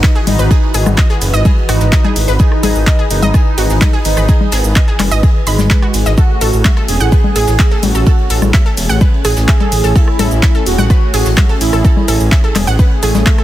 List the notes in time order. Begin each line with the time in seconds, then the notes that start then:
Already playing: E3 D#4 F#4 B4
0.03 D#5, kick, cross-stick, snare, clap, ride, shaker
0.15 G#4, ride
0.27 G#1 D#4, snare, open hi-hat, ride, low conga, shaker
0.39 G#1 B4, shaker
0.51 G#4, kick, ride, shaker
0.63 ride
0.74 G#1 G#4, open hi-hat, ride, shaker
0.86 G#1, cross-stick, low conga, shaker
0.97 D#5, kick, snare, clap, ride, shaker
1.10 G#4, snare
1.21 F#1, open hi-hat, ride, shaker
1.33 G#1 D#5, snare, shaker
1.45 G#4, kick, ride, low conga, shaker
1.58 ride
1.69 G#1 D#4 F#4, cross-stick, open hi-hat, ride, shaker
1.81 G#1, snare, shaker
1.92 D#5, kick, snare, clap, ride, shaker
2.04 G#4, low conga
2.16 G#1, open hi-hat, ride, shaker
2.28 G#1 B4, snare, shaker
2.39 D#4 G#4, kick, ride, shaker
2.52 cross-stick
2.63 G#1 G#4, open hi-hat, ride, low conga, shaker
2.75 G#1, shaker
2.86 D#5, kick, snare, clap, ride, shaker
2.99 G#4, ride
3.10 F#1 D#4, open hi-hat, ride, shaker
3.21 G#1 D#5, ride, low conga, shaker
3.34 G#4, kick, cross-stick, ride, shaker
3.58 G#1 F#4, snare, open hi-hat, shaker
3.70 G#1, snare, shaker
3.81 D#5, kick, snare, clap, ride, low conga, shaker
3.93 G#4, ride
4.05 G#1 D#4, open hi-hat, ride, shaker
4.17 G#1 B4, cross-stick, shaker
4.29 G#4, kick, ride, shaker
4.41 ride, low conga
4.51 G#1 G#4, snare, open hi-hat, ride, shaker
4.64 G#1, ride, shaker
4.76 D#5, kick, clap, ride, shaker
4.88 G#4, ride
5.00 F#1, cross-stick, clap, open hi-hat, ride, low conga, shaker
5.11 G#1 D#5, snare, shaker
5.23 G#4, kick, ride, shaker
5.36 ride
5.47 G#1 G#3 B5, open hi-hat, ride, shaker
5.59 G#1, snare, low conga, shaker
5.70 B4, kick, snare, clap, ride, shaker
5.82 F#4, cross-stick
5.94 G#1, open hi-hat, ride, shaker
6.06 G#1 D#5, snare, shaker
6.18 A3 C#4 F#4 G#4 A4, kick, ride, shaker
6.41 A1 A4, open hi-hat, ride, shaker
6.53 A1, shaker
6.65 E5, kick, snare, clap, ride, low conga, shaker
6.77 A4, cross-stick, ride
6.88 E1 G#4, open hi-hat, ride, shaker
7.00 A1 F#5, ride, shaker
7.12 B4, kick, ride, shaker
7.24 low conga
7.36 A1 G#4, snare, open hi-hat, shaker
7.47 A1, snare, shaker
7.59 E5, kick, cross-stick, snare, clap, ride, shaker
7.71 A4, ride
7.83 A1 F#4, snare, open hi-hat, ride, low conga, shaker
7.95 A1 A4, shaker
8.07 A4, kick, ride, shaker
8.18 ride
8.30 A1 A4, open hi-hat, ride, shaker
8.42 A1, cross-stick, low conga, shaker
8.53 E5, kick, snare, clap, ride, shaker
8.66 A4, snare
8.77 E1, open hi-hat, ride, shaker
8.89 A1 F#5, snare, shaker
9.01 B4, kick, ride, low conga, shaker
9.14 ride
9.25 A1 G#4, cross-stick, open hi-hat, ride, shaker
9.37 A1, snare, shaker
9.48 E5, kick, snare, clap, ride, shaker
9.60 A4, low conga
9.72 A1, open hi-hat, ride, shaker
9.84 A1 A4, snare, shaker
9.96 E4 A4, kick, ride, shaker
10.08 cross-stick
10.19 A1 A4, open hi-hat, ride, low conga, shaker
10.31 A1, shaker
10.42 E5, kick, snare, clap, ride, shaker
10.54 A4, ride
10.66 E1 F#4, open hi-hat, ride, shaker
10.78 A1 F#5, ride, low conga, shaker
10.90 B4, kick, cross-stick, ride, shaker
11.14 A1 G#4, snare, open hi-hat, shaker
11.25 A1, snare, shaker
11.37 E5, kick, snare, clap, ride, low conga, shaker
11.49 A4, ride
11.61 A1 E4, snare, open hi-hat, ride, shaker
11.73 A1 A4, cross-stick, shaker
11.84 A4, kick, ride, shaker
11.97 ride, low conga
12.08 A1 A4, open hi-hat, ride, shaker
12.20 A1, shaker
12.32 E5, kick, snare, clap, ride, shaker
12.44 A4, snare
12.55 E1, cross-stick, clap, open hi-hat, ride, low conga, shaker
12.67 A1 F#5, snare, shaker
12.79 B4, kick, ride, shaker
12.91 ride
13.03 A1 A3 G#4, open hi-hat, ride, shaker
13.15 A1, snare, low conga, shaker
13.26 E5, kick, snare, clap, ride, shaker
13.38 A4, cross-stick